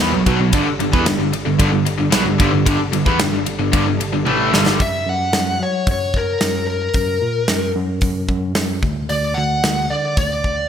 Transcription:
0.00 0.12 E2 medium
0.00 0.13 E3 medium
0.00 0.48 B3 medium
0.00 0.14 B3 medium
0.00 0.48 F#4 medium
0.00 0.48 C#5 medium
0.12 0.25 B1 medium
0.12 0.27 B2 medium
0.12 0.28 F#3 medium
0.26 0.38 B1 loud
0.26 0.39 B2 medium
0.26 0.40 F#3 loud
0.26 kick loud
0.26 ride medium
0.39 0.52 B1 medium
0.39 0.54 B2 medium
0.39 0.54 F#3 medium
0.51 0.64 G1 medium
0.51 0.66 G2 medium
0.51 0.66 D3 loud
0.51 4.75 G3 medium
0.51 4.75 D4 medium
0.51 4.75 A4 medium
0.51 kick loud
0.51 ride loud
0.65 0.78 G1 soft
0.65 muted overdriven electric guitar stroke medium
0.65 muted distorted electric guitar stroke medium
0.79 0.92 G1 medium
0.79 0.93 G2 medium
0.79 0.92 D3 medium
0.79 ride medium
0.92 1.06 E2 medium
0.92 1.05 E3 loud
0.92 1.06 B3 loud
0.92 kick loud
1.06 1.17 G1 medium
1.06 1.17 G2 medium
1.06 1.18 D3 medium
1.06 snare loud
1.06 ride medium
1.18 1.31 G1 medium
1.18 1.31 G2 medium
1.18 1.33 D3 medium
1.33 1.45 G1 soft
1.33 muted distorted electric guitar stroke medium
1.33 muted overdriven electric guitar stroke medium
1.33 ride medium
1.45 1.58 G1 medium
1.45 1.57 G2 medium
1.45 1.58 D3 medium
1.58 1.71 G1 medium
1.58 1.70 G2 loud
1.58 1.70 D3 loud
1.58 kick loud
1.58 ride medium
1.71 1.84 G1 medium
1.71 1.84 G2 medium
1.71 1.86 D3 medium
1.85 1.97 G1 soft
1.85 muted distorted electric guitar stroke medium
1.85 muted overdriven electric guitar stroke medium
1.85 ride medium
1.98 2.11 G1 medium
1.98 2.12 G2 medium
1.98 2.10 D3 medium
2.11 2.25 B1 loud
2.11 2.24 B2 medium
2.11 2.25 F#3 loud
2.11 snare loud
2.11 ride medium
2.25 2.38 G1 medium
2.25 2.37 G2 medium
2.25 2.38 D3 medium
2.38 2.51 G1 medium
2.38 2.51 G2 loud
2.38 2.51 D3 medium
2.38 kick loud
2.38 ride medium
2.52 2.65 G1 medium
2.52 2.64 G2 medium
2.52 2.65 D3 medium
2.65 2.78 G1 loud
2.65 2.78 G2 medium
2.65 2.79 D3 loud
2.65 kick loud
2.65 ride loud
2.79 2.91 G1 soft
2.79 muted distorted electric guitar stroke medium
2.79 muted overdriven electric guitar stroke medium
2.92 3.05 G1 medium
2.92 3.06 G2 medium
2.92 3.06 D3 medium
2.92 ride medium
3.06 3.19 E2 loud
3.06 3.19 E3 medium
3.06 3.19 B3 loud
3.06 kick loud
3.19 3.31 G1 medium
3.19 3.32 G2 medium
3.19 3.32 D3 medium
3.19 snare loud
3.19 ride medium
3.32 3.45 G1 medium
3.32 3.44 G2 medium
3.32 3.46 D3 medium
3.45 3.57 G1 soft
3.45 muted distorted electric guitar stroke medium
3.45 muted overdriven electric guitar stroke medium
3.45 ride medium
3.58 3.71 G1 medium
3.58 3.70 G2 medium
3.58 3.71 D3 medium
3.72 3.84 G1 medium
3.72 3.85 G2 loud
3.72 3.85 D3 loud
3.72 kick loud
3.72 ride loud
3.86 3.98 G1 medium
3.86 3.99 G2 medium
3.86 4.00 D3 medium
3.99 4.12 G1 soft
3.99 muted overdriven electric guitar stroke medium
3.99 muted distorted electric guitar stroke medium
3.99 ride medium
4.13 4.25 G1 medium
4.13 4.26 G2 medium
4.13 4.25 D3 medium
4.25 4.51 A1 medium
4.25 4.52 A2 medium
4.25 4.52 E3 medium
4.25 4.53 A3 loud
4.25 high tom medium
4.51 4.78 G1 medium
4.51 4.78 G2 medium
4.51 4.78 D3 loud
4.51 4.79 G3 loud
4.51 snare medium
4.66 snare loud
4.80 5.03 F#2 medium
4.80 5.08 E5 medium
4.80 kick loud
4.80 open hi-hat medium
5.06 5.29 F#2 medium
5.06 5.63 F#5 loud
5.33 5.56 F#2 medium
5.33 snare loud
5.33 open hi-hat soft
5.60 5.83 F#3 medium
5.60 5.86 C#5 medium
5.87 6.34 F#2 medium
5.87 kick loud
5.87 open hi-hat medium
5.91 6.17 C#5 medium
6.14 6.66 A#4 medium
6.14 kick medium
6.41 6.88 F#2 medium
6.41 snare loud
6.41 open hi-hat medium
6.67 7.71 A#4 medium
6.94 7.18 F#2 medium
6.94 kick loud
6.94 open hi-hat soft
7.21 7.45 A#2 medium
7.48 7.72 F#2 medium
7.48 snare medium
7.48 open hi-hat soft
7.75 7.98 F#2 medium
8.01 8.25 F#2 medium
8.01 kick loud
8.01 open hi-hat medium
8.29 8.52 F#2 medium
8.29 kick medium
8.55 8.79 F#2 medium
8.55 snare loud
8.55 open hi-hat medium
8.83 9.06 D2 medium
8.83 kick medium
9.09 9.33 D2 medium
9.09 9.37 D5 medium
9.09 open hi-hat soft
9.34 9.60 D2 medium
9.34 9.91 F#5 loud
9.64 9.87 D2 medium
9.64 snare loud
9.64 open hi-hat soft
9.90 10.14 D3 medium
9.90 10.17 D5 medium
10.17 10.64 D2 medium
10.17 10.69 D5 medium
10.17 kick loud
10.17 open hi-hat soft
10.44 kick medium

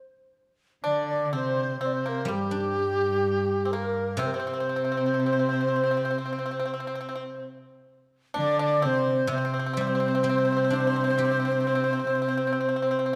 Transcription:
0.00 0.35 G4 soft
0.84 1.34 D3 medium
0.84 1.29 D4 medium
0.84 1.29 D5 medium
0.84 1.08 D5 medium
1.10 1.32 D5 medium
1.32 1.80 C3 medium
1.32 1.77 C4 medium
1.32 1.77 C5 medium
1.32 1.79 C5 medium
1.80 2.30 C3 medium
1.80 2.03 C4 medium
1.80 1.88 C5 medium
1.80 2.10 C5 medium
1.86 1.94 D5 medium
1.93 2.27 C5 medium
2.06 2.27 A#3 medium
2.06 2.33 A#4 medium
2.25 4.21 G2 medium
2.25 5.10 G3 medium
2.25 3.61 G3 medium
2.25 3.73 G4 medium
2.32 3.78 G4 medium
2.51 4.41 D4 soft
3.65 3.72 C4 medium
3.71 4.16 A#3 medium
3.71 4.18 A#4 medium
3.76 4.23 A#4 medium
4.17 6.98 C3 medium
4.17 4.32 C3 medium
4.17 4.31 C4 medium
4.17 4.31 C5 medium
4.21 4.28 C5 medium
4.27 4.37 A#4 medium
4.33 7.42 C3 medium
4.33 4.38 C4 medium
4.33 7.42 C5 medium
4.33 7.47 C5 medium
4.40 4.46 C4 medium
4.47 4.52 C4 medium
4.53 4.59 C4 soft
4.60 4.67 C4 medium
4.69 4.75 C4 soft
4.76 4.82 C4 medium
4.85 4.90 C4 soft
4.92 4.96 C4 soft
4.97 5.03 C4 soft
5.06 5.11 C4 soft
5.14 5.18 C4 soft
5.20 5.25 C4 soft
5.26 5.31 C4 soft
5.33 5.38 C4 soft
5.39 5.46 C4 soft
5.49 5.52 C4 soft
5.53 5.59 C4 soft
5.61 5.67 C4 soft
5.68 5.74 C4 soft
5.76 5.82 C4 soft
5.84 5.89 C4 soft
5.91 5.96 C4 medium
5.97 6.03 C4 soft
6.05 6.09 C4 soft
6.11 6.17 C4 soft
6.18 6.24 C4 soft
6.26 6.32 C4 soft
6.33 6.37 C4 medium
6.39 6.44 C4 soft
6.46 6.50 C4 medium
6.51 6.58 C4 soft
6.59 6.64 C4 medium
6.65 6.72 C4 medium
6.74 6.79 C4 medium
6.80 6.86 C4 soft
6.87 6.94 C4 medium
6.95 6.99 C4 medium
7.01 7.08 C4 medium
7.09 7.14 C4 medium
7.15 7.23 C4 medium
8.34 8.86 D3 loud
8.34 8.57 D4 medium
8.34 8.60 D5 medium
8.40 8.61 D5 loud
8.59 8.82 D4 medium
8.59 8.85 D5 medium
8.59 8.87 D5 loud
8.82 9.31 C3 medium
8.82 9.27 C4 medium
8.82 9.31 C5 medium
8.82 9.32 C5 loud
9.27 12.15 C3 medium
9.27 9.36 C4 medium
9.32 13.15 C3 medium
9.32 13.15 C5 medium
9.32 13.15 C5 loud
9.38 9.43 C4 medium
9.45 9.52 C4 medium
9.54 9.58 C4 medium
9.59 9.65 C4 medium
9.66 9.72 C4 medium
9.74 11.67 G3 medium
9.74 9.80 C4 medium
9.81 9.86 C4 medium
9.87 9.94 C4 medium
9.95 9.99 C4 medium
10.00 10.07 C4 medium
10.08 10.14 C4 medium
10.15 10.22 C4 medium
10.23 10.28 C4 medium
10.23 12.16 C4 soft
10.29 10.37 C4 medium
10.38 10.44 C4 medium
10.45 10.51 C4 medium
10.52 10.55 C4 medium
10.57 10.63 C4 medium
10.64 10.72 C4 medium
10.70 10.79 C4 medium
10.70 12.64 D4 medium
10.80 10.86 C4 soft
10.87 10.95 C4 medium
10.96 11.03 C4 medium
11.04 11.09 C4 medium
11.10 11.17 C4 medium
11.18 11.24 C4 medium
11.18 13.13 G4 soft
11.25 11.30 C4 soft
11.31 11.38 C4 medium
11.40 11.44 C4 medium
11.45 11.50 C4 medium
11.52 11.59 C4 soft
11.60 11.66 C4 medium
11.67 11.74 C4 soft
11.75 11.83 C4 medium
11.84 11.91 C4 soft
11.93 11.98 C4 medium
11.99 12.06 C4 soft
12.07 12.14 C4 medium
12.15 12.21 C4 soft
12.22 12.27 C4 medium
12.28 12.35 C4 soft
12.37 12.44 C4 medium
12.47 12.51 C4 medium
12.53 12.59 C4 medium
12.61 12.66 C4 medium
12.69 12.74 C4 medium
12.76 12.81 C4 medium
12.82 12.88 C4 medium
12.91 12.97 C4 soft
12.99 13.04 C4 medium
13.06 13.12 C4 medium

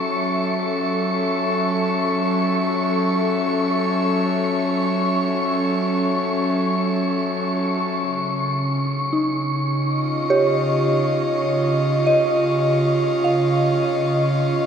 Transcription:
0.00 7.95 F#3 medium
0.00 7.95 C#4 medium
0.00 7.95 A4 medium
0.00 7.96 E5 medium
0.00 14.66 C#6 medium
7.97 14.66 C#3 medium
9.13 10.25 D#4 soft
9.71 14.66 D#5 medium
9.83 14.66 F4 medium
10.30 13.27 G4 soft
10.30 12.30 C#5 medium
12.06 13.48 D#5 medium
13.24 14.66 F5 medium

